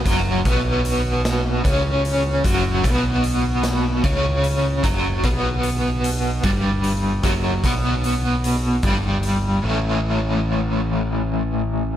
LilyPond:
<<
  \new Staff \with { instrumentName = "Overdriven electric guitar" } { \clef bass \time 6/8 \key fis \phrygian \tempo 4. = 50 <fis, fis>8 <b, b>4. <cis cis'>4 | <fis, fis>8 <b, b>4. <cis cis'>4 | <fis, fis>8 <b, b>4. <g, g>4 | <fis, fis>8 <b, b>4. <g, g>4 |
<a, e a cis' e'>2. | }
  \new Staff \with { instrumentName = "Picked electric bass" } { \clef bass \time 6/8 \key fis \phrygian fis,,8 b,,4. cis,4 | fis,,8 b,,4. cis,4 | fis,,8 b,,4. g,,4 | fis,,8 b,,4. g,,4 |
a,,2. | }
  \new DrumStaff \with { instrumentName = "Drums" } \drummode { \time 6/8 <hh bd>8 <hh bd>8 hh8 <hh sn>8 <hh bd>8 hh8 | <hh bd>8 <hh bd>8 hh8 <hh sn>8 <hh bd>8 hh8 | <hh bd>8 <hh bd>8 hh8 hh8 <hh bd>8 hh8 | <hh bd>8 <hh bd>8 hh8 hh8 <hh bd>8 hh8 |
r4. r4. | }
>>